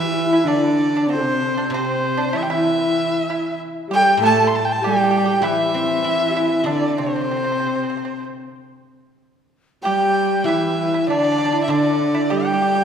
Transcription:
0.00 0.46 E3 medium
0.00 1.71 E3 medium
0.00 0.28 E4 medium
0.00 0.48 E5 loud
0.06 0.16 G4 medium
0.14 0.46 E4 loud
0.33 0.46 E4 medium
0.44 1.09 D3 medium
0.44 0.92 D4 medium
0.44 0.91 D4 medium
0.44 1.09 D5 medium
0.93 1.09 D4 medium
0.93 1.10 D4 medium
1.07 1.71 C3 medium
1.07 1.16 C4 medium
1.07 1.53 C4 medium
1.07 1.68 C5 loud
1.15 1.23 A4 medium
1.21 1.69 C4 medium
1.57 1.71 D4 medium
1.70 3.58 C3 medium
1.70 2.36 C3 medium
1.70 2.29 C4 medium
1.70 2.39 C5 medium
1.74 2.17 C4 medium
2.17 2.33 D4 medium
2.33 2.48 E3 medium
2.33 2.47 E4 medium
2.33 2.46 E4 medium
2.38 2.44 E5 medium
2.43 2.52 G5 medium
2.47 3.55 E3 medium
2.47 3.54 E4 medium
2.47 3.25 E4 medium
2.47 3.60 E5 medium
3.30 3.58 E4 medium
3.88 4.18 G3 medium
3.88 3.97 G4 medium
3.88 4.19 G4 medium
3.93 4.04 A4 medium
3.93 4.20 G5 loud
4.03 4.22 G4 medium
4.17 6.03 A2 medium
4.17 4.45 A3 loud
4.17 4.47 A4 medium
4.24 4.46 A4 loud
4.24 4.49 A5 loud
4.47 4.57 C6 medium
4.55 4.67 A5 medium
4.65 4.73 G5 medium
4.72 4.84 A5 medium
4.81 5.45 G3 loud
4.81 4.91 G4 medium
4.81 4.90 G4 medium
4.81 5.45 G5 medium
4.89 4.95 G4 medium
4.89 4.98 A4 medium
4.96 5.27 G4 medium
4.96 5.02 G4 medium
5.03 5.10 G4 medium
5.11 5.16 G4 medium
5.17 5.24 G4 medium
5.25 5.32 G4 medium
5.25 5.42 G4 loud
5.42 7.29 E3 medium
5.42 6.69 E3 medium
5.42 6.25 E4 medium
5.42 6.32 E4 medium
5.42 6.59 E5 loud
5.74 6.99 C4 medium
6.04 7.30 E4 medium
6.29 6.36 G4 medium
6.34 6.64 E4 medium
6.34 6.65 E4 medium
6.59 6.68 E5 medium
6.64 8.55 D3 medium
6.64 7.01 D3 medium
6.64 6.91 D4 medium
6.64 6.96 D4 medium
6.64 7.00 D5 medium
6.91 6.98 D4 soft
6.96 8.25 C3 medium
6.96 8.23 C4 medium
6.96 7.05 C4 medium
6.96 8.24 C5 medium
7.06 7.13 C4 soft
7.16 7.20 C4 medium
7.21 7.28 C4 soft
7.31 7.36 C4 soft
7.37 7.43 C4 soft
7.44 7.51 C4 soft
7.52 7.58 C4 soft
7.60 7.65 C4 soft
7.66 7.73 C4 soft
7.75 7.81 C4 soft
7.83 7.89 C4 soft
7.90 7.96 C4 medium
7.97 8.03 C4 soft
8.05 8.11 C4 soft
9.82 10.46 G3 medium
9.82 10.47 G4 medium
9.82 10.43 G4 medium
9.82 10.47 G5 loud
10.44 11.09 E3 medium
10.44 12.31 E3 medium
10.44 11.10 E4 medium
10.44 11.08 E5 medium
10.48 10.91 E4 medium
10.94 11.08 E4 medium
11.08 11.69 D3 medium
11.08 11.55 D4 medium
11.08 11.16 D4 medium
11.08 11.60 D5 loud
11.19 11.23 D4 medium
11.24 11.31 D4 medium
11.32 11.37 D4 medium
11.38 11.44 D4 medium
11.46 11.51 D4 medium
11.52 11.59 D4 medium
11.52 11.67 E4 medium
11.63 12.26 D4 medium
11.63 11.71 E5 medium
11.68 12.84 D3 medium
11.68 12.33 D3 loud
11.68 11.98 D4 medium
11.68 12.32 D5 medium
11.98 12.13 C4 medium
12.14 12.30 E4 medium
12.30 12.84 G3 medium
12.30 12.38 G4 medium
12.30 12.84 G4 medium
12.30 12.84 G5 loud
12.40 12.43 G4 medium
12.45 12.52 G4 medium
12.54 12.60 G4 medium
12.62 12.67 G4 medium
12.69 12.74 G4 soft
12.75 12.82 G4 medium

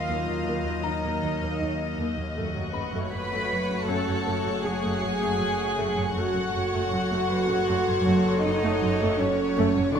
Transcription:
0.00 2.32 D#2 medium
0.00 2.18 F#3 soft
0.00 2.18 A#3 soft
0.00 0.81 F4 soft
0.00 2.33 D#5 soft
0.00 3.08 D#5 soft
0.00 0.84 F5 soft
0.00 2.32 F5 soft
0.00 1.94 A#5 soft
0.00 1.18 B5 soft
0.00 1.95 F6 soft
0.08 0.16 D#2 soft
0.08 0.31 D#3 soft
0.08 0.26 A#3 soft
0.27 0.35 D#2 soft
0.27 0.36 F#3 soft
0.45 0.53 D#2 soft
0.45 0.69 D#3 soft
0.45 0.65 A#3 soft
0.65 0.73 D#2 soft
0.65 0.74 F#3 soft
0.83 0.92 D#2 soft
0.83 0.93 F3 soft
0.83 1.98 D#4 soft
0.83 1.08 D#4 soft
0.83 1.98 D#5 soft
0.83 3.12 A#5 soft
1.03 1.11 D#2 soft
1.03 1.21 A#3 soft
1.22 1.30 D#2 soft
1.22 1.45 D#3 soft
1.22 1.31 F#3 soft
1.41 1.49 D#2 soft
1.41 1.59 A#3 soft
1.60 1.68 D#2 soft
1.60 1.69 F#3 soft
1.60 1.83 D#4 soft
1.98 2.06 D#2 soft
1.98 2.16 A#3 soft
1.98 2.21 D#4 soft
2.17 2.25 D#2 soft
2.17 2.25 F#3 soft
2.35 6.14 F#1 medium
2.35 2.44 F#2 soft
2.35 2.59 F#2 soft
2.35 6.11 F#3 soft
2.35 6.12 A3 soft
2.35 2.54 A3 soft
2.35 6.12 F#4 soft
2.35 6.16 F#4 soft
2.35 6.15 C#5 soft
2.35 6.12 F#5 soft
2.35 9.54 F#5 soft
2.35 7.18 C#6 soft
2.35 8.02 F#6 soft
2.55 2.63 F#2 soft
2.55 2.63 F#3 soft
2.73 2.81 F#2 soft
2.73 2.97 F#2 soft
2.73 2.82 C#3 soft
2.73 6.63 B4 soft
2.73 6.64 B5 soft
2.93 3.01 F#2 soft
2.93 3.11 A3 soft
3.11 3.20 F#2 soft
3.11 3.20 F#3 soft
3.11 3.35 F#3 soft
3.11 3.84 B4 medium
3.11 6.14 C#5 soft
3.11 3.83 B5 soft
3.31 3.39 F#2 soft
3.31 3.49 A3 soft
3.50 3.73 F#2 soft
3.69 3.76 F#2 soft
3.69 3.77 C#3 soft
3.88 3.95 F#2 soft
3.88 4.11 F#2 soft
3.88 4.06 A3 soft
3.88 7.78 C#4 soft
3.88 4.64 A4 medium
3.88 7.78 C#5 soft
3.88 4.64 A5 soft
4.06 4.14 F#2 soft
4.06 4.14 F#3 soft
4.26 4.33 F#2 soft
4.26 4.49 F#2 soft
4.26 4.44 A3 soft
4.45 4.53 F#2 soft
4.45 4.52 F#3 soft
4.63 4.72 F#2 soft
4.63 4.72 C#3 soft
4.63 4.87 F#3 soft
4.63 6.16 G#4 medium
4.63 6.16 G#5 medium
4.82 4.91 F#2 soft
4.82 5.00 A3 soft
5.02 5.25 F#2 soft
5.02 5.10 F#2 soft
5.02 5.09 F#3 soft
5.21 5.29 F#2 medium
5.21 5.39 A3 soft
5.39 5.48 F#2 soft
5.39 5.47 F#3 soft
5.39 5.62 F#3 soft
5.77 5.86 F#2 medium
5.77 6.01 F#3 soft
5.77 5.95 A3 medium
5.96 6.04 F#2 soft
5.96 6.04 F#3 soft
6.14 9.91 F#1 medium
6.14 6.39 F#2 medium
6.14 6.24 F#2 medium
6.14 9.78 F#3 medium
6.14 6.34 A3 soft
6.14 9.92 F#4 soft
6.14 8.40 F#4 medium
6.14 9.78 A4 medium
6.14 9.92 A4 soft
6.14 9.91 C#5 soft
6.14 9.92 C#5 soft
6.14 8.40 F#5 medium
6.14 9.92 F#5 soft
6.35 6.43 F#2 soft
6.35 6.42 F#3 soft
6.54 6.77 F#2 soft
6.54 6.62 F#2 soft
6.54 6.61 C#3 soft
6.73 6.80 F#2 medium
6.73 6.91 A3 medium
6.92 6.99 F#2 soft
6.92 7.15 F#3 soft
6.92 7.00 F#3 soft
7.10 7.18 F#2 medium
7.10 7.28 A3 medium
7.18 8.78 C6 soft
7.30 7.53 F#2 soft
7.30 9.99 B4 soft
7.48 7.56 F#2 soft
7.48 7.56 C#3 soft
7.67 7.75 F#2 medium
7.67 7.91 F#2 soft
7.67 7.85 A3 soft
7.87 7.94 F#2 soft
7.87 7.94 F#3 soft
8.05 8.13 F#2 medium
8.05 8.29 F#2 medium
8.05 8.24 A3 medium
8.25 8.32 F#2 soft
8.25 8.32 F#3 soft
8.43 8.51 F#2 soft
8.43 8.51 C#3 medium
8.43 8.66 F#3 soft
8.43 9.20 D#4 medium
8.43 9.18 D#5 medium
8.63 8.70 F#2 medium
8.63 8.80 A3 medium
8.81 8.89 F#2 medium
8.81 9.04 F#2 soft
8.81 8.89 F#3 soft
9.00 9.08 F#2 medium
9.00 9.18 A3 medium
9.19 9.27 F#2 soft
9.19 9.42 F#3 soft
9.19 9.28 F#3 medium
9.19 9.96 C#4 medium
9.19 9.96 C#5 medium
9.57 9.65 F#2 medium
9.57 9.80 F#3 medium
9.57 9.75 A3 medium
9.77 9.84 F#2 soft
9.77 9.84 F#3 medium
9.95 10.00 D2 medium
9.95 10.00 D3 medium
9.95 10.00 F#3 medium
9.95 10.00 D4 medium
9.95 10.00 E4 medium
9.95 10.00 D5 medium
9.95 10.00 C#6 medium
9.95 10.00 D6 medium

